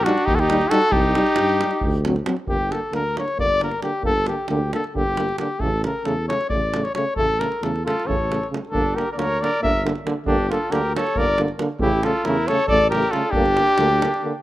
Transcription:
0.04 G3 D4 D#4 F#4, davul high
0.18 davul high
0.25 D#2 D#4 G4, davul low
0.35 F#4 A4
0.39 D#4 G4, davul high
0.50 G3 D#4, davul high
0.61 davul high
0.68 G3 D#4 F#4 A4, davul high
0.82 davul high
0.90 C2 D#4 G4, davul low
1.03 davul high
1.15 G3 D#4, davul high
1.27 davul high
1.36 G2, davul high
1.49 davul high
1.60 G3 D#4, davul high
1.71 davul high
1.81 D2, davul low
2.05 F#3 C4, davul high
2.16 davul high
2.25 F#3 C4, davul high
2.37 davul high
2.47 G1 D3 A#3 G4, davul low
2.71 D3 A#3 A4, davul high
2.91 D2 D3 A#3 A#4, davul high
3.15 D3 A#3 C#5, davul high
3.28 davul high
3.37 G1 D3 A#3 D5, davul low
3.61 D3 A#3 A#4, davul high
3.71 davul high
3.82 D3 A#3 G4, davul high
4.03 G1 D3 A#3 A4, davul low
4.26 D3 A#3 G4, davul high
4.48 D2 D3 A#3 G4, davul high
4.73 D3 A#3 A4, davul high
4.84 davul high
4.94 G1 D3 A#3 G4, davul low
5.17 D3 A#3, davul high
5.29 davul high
5.38 D3 A#3 G4, davul high
5.59 A1 C#3 A3 A4, davul low
5.83 C#3 A3 A#4, davul high
6.04 E2 C#3 A3 A4, davul high
6.28 C#3 A3 C#5, davul high
6.41 davul high
6.49 A1 C#3 A3 D5, davul low
6.74 C#3 A3, davul high
6.84 C#5, davul high
6.95 C#3 A3 C#5, davul high
7.16 A1 C#3 A3 A4, davul low
7.29 davul high
7.40 C#3 A3 A#4, davul high
7.52 davul high
7.62 E2 C#3 A3 A4, davul high
7.76 davul high
7.85 C#3 A3 F4 A4, davul high
8.00 davul high
8.06 A1 C#3 A3 A4 C#5, davul low
8.30 C#3 A3, davul high
8.43 davul high
8.50 C#3 A3
8.54 davul high
8.65 davul high
8.71 G1 D3 A#3 D4 A4, davul low
8.95 D3 A#3 G4 A#4, davul high
9.11 A#4 D5
9.16 D2 D3 A#3 A#4 C#5, davul high
9.41 D3 A#3 A#4 D5, davul high
9.54 davul high
9.61 G1 D3 A#3 A#4 E5, davul low
9.83 D3 A#3, davul high
9.95 davul high
10.05 D3 A#3, davul high
10.25 G1 D3 A#3 D4 G4, davul low
10.50 D3 A#3 F4 A4, davul high
10.71 D2 D3 A#3 G4 A#4, davul high
10.95 D3 A#3 A4 C#5, davul high
11.07 davul high
11.16 G1 D3 A#3 A#4 D5, davul low
11.38 D3 A#3, davul high
11.48 davul high
11.58 D3 A#3, davul high
11.79 A1 C#3 A3 E4 G4, davul low
12.03 C#3 A3 F4 A4, davul high
12.24 E2 C#3 A3 E4 A#4, davul high
12.47 C#3 A3 A4 C#5, davul high
12.60 davul high
12.67 A1 A3 A4 D5, davul low
12.71 C#3
12.90 C#3 G4 A#4, davul high
12.94 A3
13.03 davul high
13.10 C#3 F4 A4, davul high
13.14 A3
13.31 G1 A#3 D4 G4, davul low
13.35 D3
13.46 davul high
13.57 D3 A#3, davul high
13.67 davul high
13.78 D2 D3 A#3, davul high
13.90 davul high
14.01 D3 A#3, davul high
14.14 davul high
14.23 D3 A#3

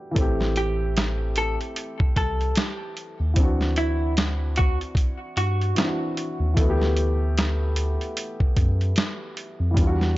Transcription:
Already playing: G4
0.11 E3 A3
0.16 A1 C4, kick, closed hi-hat
0.21 G4
0.41 snare
0.56 G4, closed hi-hat
0.97 snare, closed hi-hat
1.36 A4, closed hi-hat
1.61 closed hi-hat
1.76 closed hi-hat
2.00 kick
2.16 C2 A4, kick, closed hi-hat
2.41 closed hi-hat
2.56 G4, snare, closed hi-hat
2.97 closed hi-hat
3.20 D#2
3.34 D2 E3 C4, kick, closed hi-hat
3.40 D4 F#4
3.61 snare
3.76 E4, closed hi-hat
4.17 snare, closed hi-hat
4.56 F#4, kick, closed hi-hat
4.81 closed hi-hat
4.95 kick, closed hi-hat
5.37 G2 F#4, closed hi-hat
5.61 closed hi-hat
5.75 E3 C4 D4, snare, closed hi-hat
5.80 E4
5.86 F#4
6.17 closed hi-hat
6.40 D#2
6.54 E3 A3, kick, closed hi-hat
6.60 B3 F#4
6.70 G4
6.81 snare
6.97 closed hi-hat
7.38 snare, closed hi-hat
7.76 closed hi-hat
8.01 closed hi-hat
8.17 closed hi-hat
8.40 kick
8.57 F#2, kick, closed hi-hat
8.81 closed hi-hat
8.96 snare, closed hi-hat
9.37 closed hi-hat
9.60 F2
9.71 E3 G3
9.77 E2 D4 F4, kick, closed hi-hat
9.87 F#4
10.01 snare

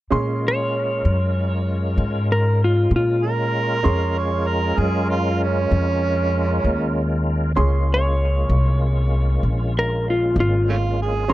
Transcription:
0.10 A#2 G#3 C#4 F4 G#4 A#4 C6
0.48 C#5
1.05 F#2
1.98 G#2
2.32 A#4
2.64 F4
2.91 A#2
2.96 F4
3.23 A#4
3.83 F2 G#3 C#4 F4 G#4 A#4 C6
4.18 C#5
4.47 A#4
4.78 F#2 G#4
5.10 F4
5.43 C#4
5.71 F2
6.64 D#2
7.55 C#2 G#3 A#3 C#4 F4 G#4 C6
7.94 C#5
8.49 C2
9.43 A#1
9.79 A#4
10.10 F4
10.36 G#1
10.40 F4
10.69 A3 C#4 F4
11.02 G#4
11.28 A#1 D3 G#3 B3 C#4 F#4 G#4 C6

